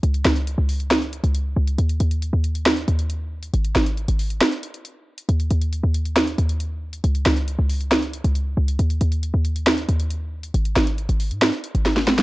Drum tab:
HH |xxxxx-oxxxxxx--x|xxxxx-xxxxxxx--x|xxxxxxoxxxxxx--x|xxxxx-xxxxxxx--x|
SD |--o-----o-------|--------o-------|--o-----o-------|--------o-------|

HH |xxxxx-oxxxxxx--x|xxxxx-xxxxxxx--x|xxxxxxoxxxxxx--x|
SD |--o-----o-------|--------o-------|--o-----o---oooo|